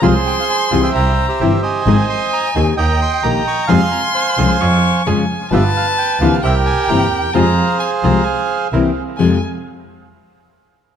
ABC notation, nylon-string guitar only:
X:1
M:4/4
L:1/8
Q:1/4=131
K:Fm
V:1 name="Nylon-string guitar" clef=bass
[C,F,A,CF] z2 [C,=E,G,C=E] z2 [C,E,G,CE] z | [E,A,CEA] z2 [E,B,EG] z2 [E,B,EG] z | [C,F,A,CF] z2 [D,F,A,DF] z2 [D,F,A,DF] z | [G,=B,F] z2 [C,=E,_B,C=E] z2 [C,E,B,CE] z |
[C,F,A,CF] z2 [C,F,A,CF] z2 [C,=E,B,C=E] z | [F,,C,F,A,CF] z6 z |]